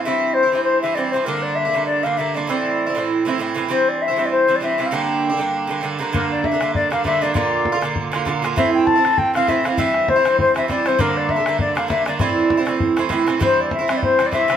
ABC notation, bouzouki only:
X:1
M:4/4
L:1/16
Q:"Swing" 1/4=198
K:Gdor
V:1 name="Bouzouki"
[G,,E,CE]4- [G,,E,CE] [E,CE] [G,,E,CE]4 [G,,E,CE]2 [G,,E,CE]2 [G,,E,CE]2 | [G,,D,B,D]4- [G,,D,B,D] [D,B,D] [G,,D,B,D]4 [G,,D,B,D]2 [G,,D,B,D]2 [G,,D,B,D]2 | [A,,E,CE]4- [A,,E,CE] [E,CE] [A,,E,CE]4 [A,,E,CE]2 [A,,E,CE]2 [A,,E,CE]2 | [G,,E,CE]4- [G,,E,CE] [E,CE] [G,,E,CE]4 [G,,E,CE]2 [G,,E,CE]2 [G,,E,CE]2 |
[G,,D,B,D]4- [G,,D,B,D] [D,B,D] [G,,D,B,D]4 [G,,D,B,D]2 [G,,D,B,D]2 [G,,D,B,D]2 | [G,,D,B,D]4- [G,,D,B,D] [D,B,D] [G,,D,B,D]4 [G,,D,B,D]2 [G,,D,B,D]2 [G,,D,B,D]2 | [B,,D,B,F]4- [B,,D,B,F] [D,B,F] [B,,D,B,F]4 [B,,D,B,F]2 [B,,D,B,F]2 [B,,D,B,F]2 | [A,,E,CE]4- [A,,E,CE] [E,CE] [A,,E,CE]4 [A,,E,CE]2 [A,,E,CE]2 [A,,E,CE]2 |
[G,,E,CE]4- [G,,E,CE] [E,CE] [G,,E,CE]4 [G,,E,CE]2 [G,,E,CE]2 [G,,E,CE]2 | [G,,D,B,D]4- [G,,D,B,D] [D,B,D] [G,,D,B,D]4 [G,,D,B,D]2 [G,,D,B,D]2 [G,,D,B,D]2 | [A,,E,CE]4- [A,,E,CE] [E,CE] [A,,E,CE]4 [A,,E,CE]2 [A,,E,CE]2 [A,,E,CE]2 | [G,,E,CE]4- [G,,E,CE] [E,CE] [G,,E,CE]4 [G,,E,CE]2 [G,,E,CE]2 [G,,E,CE]2 |]